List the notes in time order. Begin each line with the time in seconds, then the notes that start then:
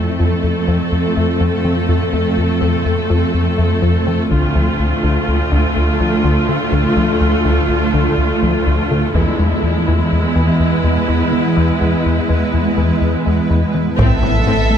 Already playing: F2 A3 C4 F4 A4
0.20 F2 F3
0.44 F2
0.68 F2 F3
0.92 F2
1.17 F2 A3
1.41 F2 F3
1.65 F3 C4
1.89 F2 F3
2.13 F2 A3
2.38 F2
2.61 F2 F3
2.86 F2
3.10 F2 F3
3.34 F2
3.58 F2 A3
3.82 F2 F3
4.07 F3 C4
4.31 D2 D3 A3 D4 F4 A4, taiko
4.55 D2 F3
4.80 D2
5.03 D2 D3
5.28 D2
5.52 D2 D3
5.76 D2
6.00 D2 F3
6.24 D2 D3
6.49 D3 A3
6.72 D2 D3
6.97 D2 F3
7.21 D2
7.45 D2 D3
7.69 D2
7.94 D2 D3
8.18 D2
8.43 D2 F3
8.67 D2 D3
8.91 D3 A3
9.15 E2 E3 G#3 B3 E4 B4, taiko
9.39 E2 G#3
9.63 E2
9.88 E2 E3
10.12 E2
10.36 E2 E3
10.60 E2
10.84 E2 G#3
11.08 E2 E3
11.33 E3 B3
11.57 E2 E3
11.81 E2 G#3
12.06 E2
12.29 E2 E3
12.54 E2
12.77 E2 E3
13.02 E2
13.26 E2 G#3
13.50 E2 E3
13.74 E3 B3
13.98 A1 A2 A3 C4 E4 A4 E5, taiko, impact
14.23 A1 A2 B3 C4
14.47 A1 A2 C4
14.71 A3